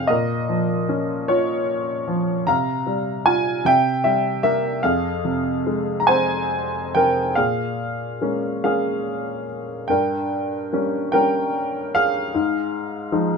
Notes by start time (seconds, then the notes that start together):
Already playing: C3 G#3 F5 G5 G#5
0.07 A#2 A#4 D#5
0.49 F3
0.89 C#4
1.28 F4 C#5
2.08 F3
2.47 C3 F5 A#5
2.87 G3
3.26 F4 G#5
3.65 C3 E5 G5
4.04 G3 E5
4.43 A#3 E5
4.83 F2 G#4 F5
5.25 C3
5.67 G#3
6.00 A#5
6.07 C4 C5 G#5
6.95 C3 A#4 G5
7.35 A#2 G#4 F5
8.21 G#3 A#3 C#4
8.64 G#3 A#3 C#4 G#4 F5
9.88 G2 A#4 G5
10.72 G3 A#3 C#4
11.12 G3 A#3 C#4 A#4 G5
11.95 G#4 F5
12.34 G#2
13.12 F3 G#3 D#4